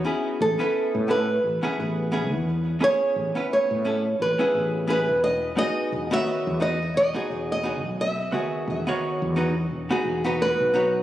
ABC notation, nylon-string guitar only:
X:1
M:4/4
L:1/16
Q:"Swing 16ths" 1/4=87
K:Alyd
V:1 name="Nylon-string guitar"
z2 A4 B8- B2 | c4 c4 B4 B2 d2 | d3 e3 d2 d3 d3 e2- | e6 z6 B4 |]